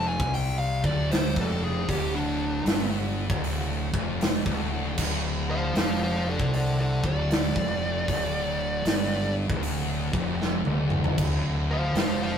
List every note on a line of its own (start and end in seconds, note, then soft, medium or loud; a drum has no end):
0.00 0.16 F1 loud
0.00 0.19 F2 loud
0.08 0.33 G#5 medium
0.19 0.80 C2 loud
0.19 0.82 C3 loud
0.19 kick loud
0.34 0.58 G5 medium
0.34 open hi-hat medium
0.59 0.84 F5 medium
0.84 1.33 D1 loud
0.84 1.35 D2 loud
0.84 1.10 D5 medium
0.84 kick loud
1.12 1.37 C5 medium
1.12 snare loud
1.12 open hi-hat medium
1.36 1.85 F1 loud
1.36 1.88 F2 loud
1.36 kick loud
1.40 1.64 A4 medium
1.64 1.88 G#4 medium
1.89 2.62 D1 medium
1.89 2.65 D2 loud
1.89 2.14 G4 medium
1.89 kick loud
1.89 open hi-hat medium
2.15 2.90 D4 medium
2.65 3.25 G1 loud
2.65 3.29 G2 medium
2.65 snare loud
2.65 open hi-hat medium
3.30 3.90 D1 loud
3.30 3.93 D2 loud
3.30 kick loud
3.44 open hi-hat medium
3.93 4.42 F1 loud
3.93 4.44 F2 loud
3.93 kick loud
4.21 snare loud
4.21 open hi-hat medium
4.46 4.94 D1 loud
4.46 4.96 D2 loud
4.46 kick loud
4.97 5.72 D1 loud
4.97 5.74 D2 loud
4.97 kick loud
4.97 crash loud
5.50 5.76 C5 medium
5.50 5.75 F5 loud
5.75 6.36 F1 loud
5.75 6.39 F2 loud
5.75 6.01 C5 medium
5.75 6.02 F5 loud
5.75 snare loud
5.75 open hi-hat medium
6.03 6.26 C5 medium
6.03 6.28 F5 medium
6.29 6.52 A4 medium
6.29 6.54 D5 medium
6.39 6.99 C2 loud
6.39 7.02 C3 loud
6.39 kick loud
6.54 6.78 A4 medium
6.54 6.80 D5 medium
6.54 open hi-hat medium
6.80 7.04 A4 medium
6.80 7.05 D5 medium
7.04 7.52 D1 loud
7.04 7.55 D2 medium
7.04 9.34 D5 loud
7.04 kick medium
7.31 snare loud
7.31 open hi-hat medium
7.56 8.05 F1 loud
7.56 8.08 F2 medium
7.56 kick loud
8.08 8.82 D1 medium
8.08 8.86 D2 loud
8.08 kick loud
8.08 open hi-hat medium
8.85 9.45 G1 loud
8.85 9.49 G2 loud
8.85 snare loud
8.85 open hi-hat medium
9.50 10.10 D1 loud
9.50 10.12 D2 loud
9.50 kick loud
9.63 open hi-hat medium
10.13 10.62 F1 loud
10.13 10.64 F2 medium
10.13 kick loud
10.42 snare medium
10.65 11.14 D1 loud
10.65 11.17 D2 loud
10.65 high tom medium
10.90 mid tom medium
11.04 floor tom loud
11.18 11.91 D1 loud
11.18 11.94 D2 loud
11.18 kick loud
11.18 crash medium
11.71 11.96 C5 loud
11.71 11.96 F5 loud
11.94 12.38 F1 loud
11.94 12.38 F2 loud
11.94 snare loud
11.94 open hi-hat medium
11.99 12.21 C5 medium
11.99 12.23 F5 medium
12.23 12.38 C5 medium
12.23 12.38 F5 medium